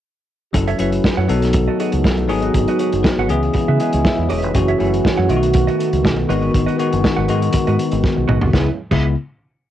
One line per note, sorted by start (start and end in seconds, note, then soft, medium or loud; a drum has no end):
0.53 0.73 F#1 loud
0.53 1.28 E3 medium
0.53 0.72 F#3 medium
0.53 2.27 A3 medium
0.53 0.72 C#4 medium
0.53 1.28 C#4 medium
0.53 0.72 E4 medium
0.53 3.27 F#4 medium
0.53 0.72 A4 medium
0.53 muted clean electric guitar stroke soft
0.53 kick loud
0.53 closed hi-hat medium
0.67 0.78 A4 medium
0.67 0.78 C#5 medium
0.67 0.79 E5 medium
0.67 closed hi-hat soft
0.78 0.98 F#1 medium
0.78 1.15 F#3 medium
0.78 1.15 C#4 medium
0.78 1.15 E4 medium
0.78 0.93 A4 medium
0.78 1.15 B4 medium
0.78 0.92 C#5 medium
0.78 0.91 E5 medium
0.78 closed hi-hat medium
0.92 muted clean electric guitar stroke soft
0.92 closed hi-hat soft
1.04 muted clean electric guitar stroke soft
1.04 kick loud
1.04 snare loud
1.17 1.27 F#2 medium
1.17 1.28 A4 medium
1.17 1.29 C#5 medium
1.17 1.30 F#5 medium
1.28 1.67 B1 medium
1.28 3.27 D#3 medium
1.28 2.09 F#3 medium
1.28 2.09 B3 medium
1.28 4.51 B3 medium
1.28 1.78 D#4 medium
1.28 1.42 F#4 medium
1.28 1.42 A4 medium
1.28 1.79 A4 loud
1.28 1.42 D#5 medium
1.28 closed hi-hat medium
1.42 muted clean electric guitar stroke soft
1.42 snare soft
1.42 closed hi-hat medium
1.53 muted clean electric guitar stroke soft
1.53 kick loud
1.53 closed hi-hat medium
1.68 1.79 F#4 medium
1.68 1.79 A4 medium
1.68 1.80 D#5 medium
1.79 2.03 D#4 medium
1.79 1.96 F#4 medium
1.79 2.03 G#4 medium
1.79 1.93 A4 medium
1.79 1.92 D#5 medium
1.79 closed hi-hat medium
1.92 2.02 C#2 medium
1.92 muted clean electric guitar stroke soft
1.92 closed hi-hat medium
2.04 2.30 B1 medium
2.04 2.28 D#4 medium
2.04 2.52 A4 medium
2.04 muted clean electric guitar stroke soft
2.04 kick loud
2.04 snare loud
2.17 muted clean electric guitar stroke soft
2.17 closed hi-hat soft
2.28 2.49 G#1 loud
2.28 2.69 F#3 medium
2.28 3.28 G#3 medium
2.28 2.69 B3 medium
2.28 2.70 D#4 medium
2.28 2.43 F#4 medium
2.28 2.70 G#4 loud
2.28 2.42 B4 medium
2.28 2.42 D#5 medium
2.28 open hi-hat soft
2.42 2.54 F#4 soft
2.42 2.54 B4 medium
2.42 2.55 D#5 medium
2.42 closed hi-hat soft
2.54 2.65 G#1 loud
2.54 muted clean electric guitar stroke soft
2.54 kick loud
2.54 closed hi-hat medium
2.68 2.79 F#4 medium
2.68 2.80 B4 medium
2.68 2.80 D#5 medium
2.68 closed hi-hat soft
2.79 2.93 F#4 medium
2.79 3.03 G#4 medium
2.79 2.93 B4 medium
2.79 3.03 C#5 medium
2.79 2.92 D#5 medium
2.79 closed hi-hat medium
2.93 3.02 F#1 medium
2.93 muted clean electric guitar stroke medium
2.93 closed hi-hat soft
3.03 3.52 F#4 medium
3.03 3.51 B4 medium
3.03 muted clean electric guitar stroke soft
3.03 kick loud
3.03 snare loud
3.18 3.27 G#1 medium
3.18 3.30 F#4 medium
3.18 3.30 B4 medium
3.18 3.31 F#5 medium
3.28 3.48 C#2 loud
3.28 4.53 C#3 medium
3.28 4.09 E3 medium
3.28 4.53 G#3 medium
3.28 4.09 B3 medium
3.28 4.10 C#4 medium
3.28 4.53 E4 medium
3.28 3.80 G#4 loud
3.28 3.43 G#4 medium
3.28 3.43 B4 medium
3.28 3.43 E5 medium
3.28 closed hi-hat medium
3.43 closed hi-hat soft
3.53 muted fingered electric bass stroke soft
3.53 muted clean electric guitar stroke soft
3.53 kick loud
3.53 closed hi-hat medium
3.68 3.77 C#3 loud
3.68 3.80 G#4 medium
3.68 3.80 B4 medium
3.68 3.80 E5 medium
3.80 3.94 G#4 medium
3.80 3.93 B4 medium
3.80 4.04 D#5 medium
3.80 3.92 E5 medium
3.80 4.04 G#5 medium
3.80 closed hi-hat medium
3.93 4.02 C#2 medium
3.93 muted clean electric guitar stroke soft
3.93 closed hi-hat medium
4.05 4.29 B4 medium
4.05 4.28 E5 medium
4.05 muted clean electric guitar stroke soft
4.05 kick loud
4.05 snare loud
4.18 4.27 E2 medium
4.18 muted clean electric guitar stroke soft
4.29 4.43 E1 medium
4.29 4.43 G#4 medium
4.29 4.77 G#4 medium
4.29 4.42 B4 medium
4.29 4.77 C#5 medium
4.29 4.42 E5 loud
4.29 open hi-hat medium
4.42 4.52 F1 medium
4.42 4.54 G#4 medium
4.42 4.55 B4 medium
4.42 4.54 E5 medium
4.42 closed hi-hat soft
4.54 4.74 F#1 loud
4.54 4.72 E3 medium
4.54 5.29 E3 medium
4.54 4.72 A3 medium
4.54 6.28 A3 medium
4.54 4.73 C#4 medium
4.54 5.29 C#4 medium
4.54 6.28 F#4 medium
4.54 4.73 F#4 medium
4.54 muted clean electric guitar stroke soft
4.54 kick loud
4.54 closed hi-hat medium
4.68 4.78 A4 medium
4.68 4.79 C#5 medium
4.68 4.79 E5 medium
4.68 closed hi-hat soft
4.78 4.99 F#1 medium
4.78 5.15 E3 medium
4.78 5.15 A3 medium
4.78 5.15 C#4 medium
4.78 5.16 E4 medium
4.78 4.93 A4 medium
4.78 4.92 C#5 medium
4.78 4.91 E5 medium
4.78 closed hi-hat medium
4.93 muted clean electric guitar stroke soft
4.93 closed hi-hat soft
5.04 muted clean electric guitar stroke soft
5.04 kick loud
5.04 snare loud
5.17 5.27 F#2 medium
5.17 5.29 A4 medium
5.17 5.30 C#5 medium
5.17 5.30 F#5 medium
5.29 5.67 B1 loud
5.29 6.10 D#3 loud
5.29 8.50 D#3 medium
5.29 6.10 A3 medium
5.29 8.50 B3 medium
5.29 6.10 B3 medium
5.29 5.36 F4 medium
5.29 5.43 F#4 medium
5.29 5.42 A4 medium
5.29 5.41 D#5 medium
5.29 closed hi-hat medium
5.36 6.13 F#4 loud
5.42 muted clean electric guitar stroke soft
5.42 closed hi-hat medium
5.53 muted clean electric guitar stroke soft
5.53 kick loud
5.53 closed hi-hat medium
5.67 5.77 F#4 medium
5.67 5.77 A4 medium
5.67 5.78 D#5 medium
5.67 closed hi-hat soft
5.78 5.92 F#4 medium
5.78 5.91 A4 medium
5.78 5.90 D#5 medium
5.78 closed hi-hat medium
5.92 6.05 C#2 medium
5.92 muted clean electric guitar stroke soft
5.92 closed hi-hat medium
6.04 6.24 B1 medium
6.04 muted clean electric guitar stroke soft
6.04 kick loud
6.04 snare medium
6.17 muted clean electric guitar stroke soft
6.29 6.48 G#1 loud
6.29 6.70 D#3 medium
6.29 6.70 G#3 medium
6.29 8.52 G#3 medium
6.29 6.70 B3 medium
6.29 6.41 F#4 medium
6.29 8.51 F#4 medium
6.29 6.70 F#4 loud
6.29 6.41 B4 medium
6.29 6.40 D#5 medium
6.29 open hi-hat medium
6.41 6.52 F#4 medium
6.41 6.52 B4 medium
6.41 6.53 D#5 medium
6.41 closed hi-hat soft
6.53 6.65 G#1 medium
6.53 muted clean electric guitar stroke soft
6.53 kick loud
6.53 closed hi-hat medium
6.66 6.77 F#4 medium
6.66 6.78 B4 medium
6.66 6.78 D#5 medium
6.66 closed hi-hat soft
6.78 7.15 D#3 medium
6.78 7.15 G#3 medium
6.78 7.15 B3 medium
6.78 6.92 F#4 medium
6.78 7.15 F#4 medium
6.78 6.91 B4 medium
6.78 6.90 D#5 medium
6.78 closed hi-hat medium
6.92 7.02 F#1 loud
6.92 closed hi-hat soft
7.03 muted clean electric guitar stroke soft
7.03 kick loud
7.03 snare loud
7.17 7.27 G#1 loud
7.17 7.27 F#4 medium
7.17 7.28 B4 medium
7.17 7.29 F#5 medium
7.28 7.48 G#2 medium
7.28 7.99 D#3 medium
7.28 8.00 G#3 medium
7.28 8.00 B3 medium
7.28 7.42 F#4 medium
7.28 8.00 F#4 loud
7.28 7.41 B4 medium
7.28 7.41 D#5 medium
7.28 closed hi-hat medium
7.42 closed hi-hat medium
7.53 muted clean electric guitar stroke soft
7.53 muted fingered electric bass stroke soft
7.53 kick loud
7.53 closed hi-hat loud
7.67 7.76 G#2 loud
7.67 7.77 F#4 medium
7.67 7.77 B4 medium
7.67 7.78 D#5 loud
7.67 closed hi-hat soft
7.78 muted clean electric guitar stroke soft
7.78 closed hi-hat medium
7.92 8.01 G#1 loud
7.92 muted clean electric guitar stroke soft
7.92 closed hi-hat medium
8.04 muted clean electric guitar stroke soft
8.04 kick loud
8.04 snare soft
8.17 8.26 B1 medium
8.17 muted clean electric guitar stroke soft
8.28 8.39 B1 medium
8.28 8.41 F#4 medium
8.28 8.40 B4 medium
8.28 8.40 D#5 loud
8.28 mid tom medium
8.41 8.51 C2 medium
8.41 8.53 F#4 soft
8.41 8.53 B4 medium
8.41 8.53 D#5 medium
8.41 floor tom medium
8.53 8.68 C#2 medium
8.53 8.77 C#3 medium
8.53 8.68 C#3 medium
8.53 8.76 G#3 medium
8.53 8.68 G#3 medium
8.53 8.76 B3 medium
8.53 8.68 B3 medium
8.53 8.76 E4 medium
8.53 8.68 E4 medium
8.53 8.69 G#4 medium
8.53 8.69 B4 medium
8.53 8.70 E5 medium
8.53 kick loud
8.53 snare medium
8.91 9.15 C#2 loud
8.91 9.15 C#3 medium
8.91 9.15 G#3 medium
8.91 9.15 B3 medium
8.91 9.15 E4 medium
8.91 9.06 G#4 medium
8.91 9.06 B4 medium
8.91 9.06 E5 loud
8.91 kick loud
8.91 crash medium